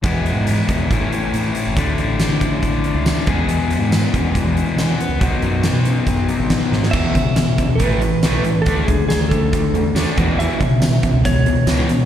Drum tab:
CC |----------------|----------------|----------------|----------------|
HH |x-x-x-x-x-x-x-x-|x-x-x-x-x-x-x-x-|x-x-x-x-x-x-x-x-|x-x-x-x-x-x-x---|
TB |----------------|----x-------x---|----x-------x---|----x-------x---|
SD |----------------|----o-------o---|----o-------o---|----o-------o-oo|
BD |o-----o-o-------|o-----o-o-----o-|------o-o-------|o-------o---o---|

CC |x---------------|----------------|----------------|
HH |--x-x-x-x-x-x-x-|x-x-x-x-x-x-x-x-|x-x-x-x-x-x-x-x-|
TB |----x-------x---|----x-------x---|----x-------x---|
SD |----o-------o---|----o-------o---|----o-------o---|
BD |o-o---o-o-------|o-o---o-o-----o-|--o---o-o-------|